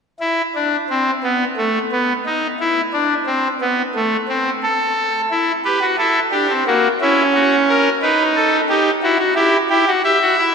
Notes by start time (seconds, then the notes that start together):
0.20 E4
0.55 D4
0.90 C4
1.24 B3
1.57 A3
1.92 B3
2.26 D#4
2.60 E4
2.93 D4
3.26 C4
3.61 B3
3.95 A3
4.29 C4
4.63 A4
5.31 E4
5.64 G4 B4
5.81 F#4
5.98 E4 A4
6.31 D4 G4
6.49 C4
6.67 A#3 F#4
7.01 C#4 E4
7.34 F#4
7.68 A#4
8.02 D#4 B4
8.36 A4
8.69 D#4 G4
9.03 E4 F#4
9.19 F#4
9.35 E4 G4
9.70 E4 G4
9.87 F#4
10.04 G4 E5
10.22 F#4
10.38 E4